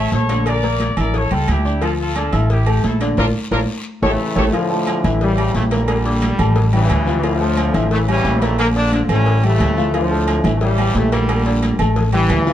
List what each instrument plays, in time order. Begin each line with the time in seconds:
Already playing: grand piano A3 A4 A5
0.12 upright bass A#1, trumpet section A4 C#5, cowbell, high conga, low timbale, short guiro
0.29 grand piano D3 D4 D5, cowbell, high conga, low agogo, short guiro
0.46 trumpet section A#4 D5, cowbell, high conga, low agogo, long guiro
0.63 grand piano A#3 A#4 A#5, cowbell, high conga
0.80 cowbell, high conga, low agogo, short guiro
0.97 upright bass A1, grand piano E4 E5 E6, trumpet section A#4 D5, high conga, low conga, low agogo, short guiro
1.14 trumpet section A4 C#5, cowbell, high conga, low conga, long guiro
1.31 upright bass C#2, grand piano G3 G4 G5, trumpet section F4 A4, low agogo
1.48 upright bass D2, trumpet section E4 G4, cowbell, high conga, low timbale, low agogo, short guiro
1.65 grand piano D4 D5 D6, short guiro
1.82 grand piano F3 F4 F5, trumpet section F4 A4, cowbell, high conga, low agogo, long guiro
2.01 trumpet section F4 A4
2.15 grand piano D4 D5 D6, trumpet section F4 A4, cowbell, high conga, low agogo, short guiro
2.33 upright bass A1, grand piano E4 E5 E6, high conga, low agogo, short guiro
2.50 trumpet section E4 G4, cowbell, high conga, long guiro
2.66 grand piano A3 A4 A5, high conga, low agogo
2.83 upright bass A#1, trumpet section E4 A4, cowbell, high conga, low timbale, short guiro
3.00 grand piano D3 D4 D5, cowbell, high conga, low agogo, short guiro
3.17 upright bass A#1, trumpet section D4 F4 A#4, grand piano F4 A#4 D5, cowbell, high conga, high timbale, long guiro
3.51 upright bass A#1, trumpet section D4 F4 A#4, grand piano F4 A#4 D5, cowbell, high conga, high timbale, long guiro
4.02 upright bass A1, trombone section C#3 E3 A3, grand piano G4 A4 C#5, trumpet section G4 A4 C#5, cowbell, high conga, high timbale, long guiro
4.36 upright bass A1, grand piano G4 A4 C#5, trumpet section G4 A4 C#5, cowbell, high conga, high timbale
4.53 trombone section A2 D3 F3, grand piano F3 F4 F5, cowbell, high conga, low agogo, long guiro
4.70 grand piano A3 A4 A5
4.87 cowbell, high conga, low agogo, short guiro
5.04 upright bass A1, grand piano E3 E4 E5, high conga, low agogo, short guiro
5.21 trombone section C#3 E3 G3, cowbell, high conga, long guiro
5.38 grand piano G3 G4 G5, low agogo
5.54 upright bass A#1, trombone section A3, cowbell, high conga, short guiro
5.71 trombone section A#2 D3 G3, grand piano A#3 A#4 A#5, cowbell, high conga, low agogo, short guiro
5.88 cowbell, high conga, low agogo, long guiro
6.05 grand piano D4 D5 D6, cowbell, high conga
6.22 cowbell, high conga, low agogo, short guiro
6.39 upright bass A1, grand piano A3 A4 A5, high conga, low conga, low agogo, short guiro
6.56 cowbell, high conga, low conga, long guiro
6.73 trombone section G2 C#3 E3, grand piano G3 G4 G5, high conga, low agogo
6.90 upright bass D2, cowbell, high conga, low agogo, short guiro
7.07 grand piano F3 F4 F5, high conga, short guiro
7.23 trombone section A2 D3 F3, grand piano F3 F4 F5, cowbell, high conga, low agogo, long guiro
7.40 grand piano A3 A4 A5, high conga
7.57 cowbell, high conga, low agogo, short guiro
7.74 upright bass A1, grand piano E3 E4 E5, high conga, low agogo, short guiro
7.91 trombone section C#3 E3 A3, cowbell, high conga, long guiro
8.08 trombone section E3 G3 C#4, grand piano G3 G4 G5, low agogo
8.24 upright bass A#1, cowbell, high conga, short guiro
8.42 trombone section A3, grand piano A#3 A#4 A#5, cowbell, high conga, low agogo, short guiro
8.58 trombone section D3 F3 A#3, cowbell, high conga, low agogo, long guiro
8.76 grand piano D4 D5 D6, trombone section D4, cowbell, high conga
8.92 trombone section D4, cowbell, high conga, low agogo, short guiro
9.09 upright bass A1, trombone section E3 G3 C#4, grand piano A3 A4 A5, high conga, low conga, low agogo, short guiro
9.26 cowbell, high conga, long guiro
9.43 trombone section C#3 E3 A3, grand piano G3 G4 G5, high conga, low agogo
9.60 upright bass D2, cowbell, high conga, low timbale, low agogo, short guiro
9.77 grand piano F3 F4 F5, high conga, short guiro
9.94 trombone section A2 D3 F3, grand piano F3 F4 F5, cowbell, high conga, low agogo, long guiro
10.11 grand piano A3 A4 A5, high conga
10.27 cowbell, high conga, low agogo, short guiro
10.44 upright bass A1, grand piano E3 E4 E5, high conga, low agogo, short guiro
10.55 trombone section A3
10.61 trombone section C#3 E3 G3, cowbell, high conga, long guiro
10.78 grand piano G3 G4 G5, low agogo
10.95 upright bass A#1, trombone section A3, cowbell, high conga, low timbale, short guiro
11.12 trombone section A#2 D3 G3, grand piano A#3 A#4 A#5, cowbell, high conga, low agogo, short guiro
11.28 cowbell, high conga, low agogo, long guiro
11.45 grand piano D4 D5 D6, cowbell, high conga
11.62 cowbell, high conga, low agogo, short guiro
11.79 upright bass A1, grand piano A3 A4 A5, high conga, low conga, low agogo, short guiro
11.96 cowbell, high conga, low conga, long guiro
12.13 trombone section G2 C#3 E3, grand piano G3 G4 G5, high conga, low agogo
12.30 upright bass D2, cowbell, high conga, low timbale, low agogo, short guiro
12.47 grand piano F3 F4 F5, short guiro